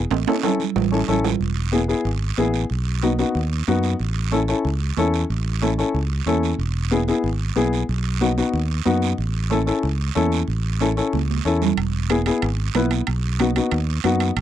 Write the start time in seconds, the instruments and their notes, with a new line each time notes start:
0.11 fingered electric bass A1, high conga, high timbale, long guiro
0.27 upright piano C#4 E4 A4, high conga, high timbale
0.43 upright piano C#4 E4 A4, low conga, high timbale, short guiro
0.60 low conga, short guiro
0.76 fingered electric bass A1, low conga, low timbale, long guiro
0.92 upright piano C#4 E4 A4
1.08 fingered electric bass A1, upright piano C#4 E4 A4, low conga, short guiro
1.24 low conga, low timbale, short guiro
1.40 fingered electric bass E1, high conga, long guiro
1.72 upright piano B3 E4 G#4, high conga, short guiro
1.88 upright piano B3 E4 G#4, short guiro
2.05 fingered electric bass G#1, high conga, long guiro
2.37 fingered electric bass A1, upright piano B3 E4 G#4, high conga, short guiro
2.54 short guiro
2.70 fingered electric bass B1, high conga, long guiro
3.03 upright piano B3 D#4 F#4, high conga, short guiro
3.19 upright piano B3 D#4 F#4, short guiro
3.35 fingered electric bass D#2, high conga, long guiro
3.67 fingered electric bass F#2, upright piano B3 D#4 F#4, high conga, short guiro
3.83 short guiro
3.99 fingered electric bass A1, high conga, long guiro
4.32 upright piano C#4 E4 A4, high conga, short guiro
4.48 upright piano C#4 E4 A4, short guiro
4.65 fingered electric bass C#2, high conga, long guiro
4.97 fingered electric bass E2, upright piano C#4 E4 A4, high conga, short guiro
5.14 short guiro
5.30 fingered electric bass A1, high conga, long guiro
5.62 upright piano C#4 E4 A4, high conga, short guiro
5.78 upright piano C#4 E4 A4, short guiro
5.94 fingered electric bass C#2, high conga, long guiro
6.26 fingered electric bass E2, upright piano C#4 E4 A4, high conga, short guiro
6.43 short guiro
6.59 fingered electric bass E1, high conga, long guiro
6.91 upright piano B3 E4 G#4, high conga, short guiro
7.08 upright piano B3 E4 G#4, short guiro
7.24 fingered electric bass G#1, high conga, long guiro
7.56 fingered electric bass B1, upright piano B3 E4 G#4, high conga, short guiro
7.73 short guiro
7.89 fingered electric bass B1, high conga, long guiro
8.21 upright piano B3 D#4 F#4, high conga, short guiro
8.37 upright piano B3 D#4 F#4, short guiro
8.53 fingered electric bass D#2, long guiro
8.85 fingered electric bass F#2, upright piano B3 D#4 F#4, high conga, short guiro
9.02 short guiro
9.18 fingered electric bass A1, high conga, long guiro
9.50 upright piano C#4 E4 A4, high conga, short guiro
9.66 upright piano C#4 E4 A4, short guiro
9.83 fingered electric bass C#2, high conga, long guiro
10.15 fingered electric bass E2, upright piano C#4 E4 A4, high conga, short guiro
10.32 short guiro
10.48 fingered electric bass A1, high conga, long guiro
10.81 upright piano C#4 E4 A4, high conga, short guiro
10.97 upright piano C#4 E4 A4, short guiro
11.13 fingered electric bass C#2, high conga, long guiro
11.30 high conga
11.45 fingered electric bass E2, upright piano C#4 E4 A4, short guiro
11.62 low conga, short guiro
11.77 fingered electric bass E1, high conga, high timbale, long guiro
12.10 upright piano B3 E4 G#4, high conga, high timbale, short guiro
12.26 upright piano B3 E4 G#4, high timbale, short guiro
12.42 fingered electric bass G#1, high timbale, long guiro
12.75 fingered electric bass B1, upright piano B3 E4 B4, high conga, high timbale, low timbale, short guiro
12.91 high timbale, short guiro
13.07 fingered electric bass B1, high conga, high timbale, long guiro
13.40 upright piano B3 D#4 F#4, high conga, high timbale, short guiro
13.56 upright piano B3 D#4 F#4, high timbale, short guiro
13.71 fingered electric bass D#2, high timbale, long guiro
14.04 fingered electric bass F#2, upright piano B3 D#4 F#4, high conga, high timbale, short guiro
14.20 high timbale, short guiro
14.36 fingered electric bass A1, high conga, high timbale, long guiro